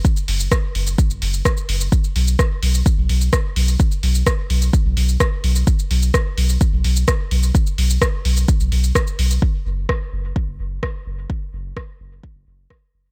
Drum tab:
HH |--o---o---o---o-|--o---o---o---o-|--o---o---o---o-|--o---o---o---o-|
SH |xx-xx--xxx-xxx-x|xx-xx--xx--xx--x|xx-xx--xx--xx--x|xx-xx--xx--xx--x|
SD |----r-------r---|----r-------r---|----r-------r---|----r-------r---|
BD |o---o---o---o---|o---o---o---o---|o---o---o---o---|o---o---o---o---|

HH |--o---o---o---o-|----------------|----------------|
SH |xx-xx--xxx-xxx-x|----------------|----------------|
SD |----r-------r---|----r-------r---|----r-------r---|
BD |o---o---o---o---|o---o---o---o---|o---o---o---o---|